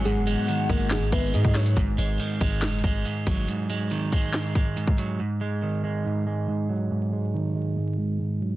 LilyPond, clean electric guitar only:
\new Staff \with { instrumentName = "Clean electric guitar" } { \clef bass \time 4/4 \key gis \minor \tempo 4 = 140 <gis, fis gis>8 gis8 dis8 gis8 gis,8 gis8 gis,8 fis8 | gis,8 gis8 dis8 gis8 gis,8 gis8 gis,8 fis8 | gis,8 gis8 dis8 gis8 gis,8 gis8 gis,8 fis8 | gis,8 gis8 dis8 gis8 gis,8 gis8 gis,8 fis8 |
gis,8 gis8 dis8 gis8 gis,8 gis8 gis,8 fis8 | }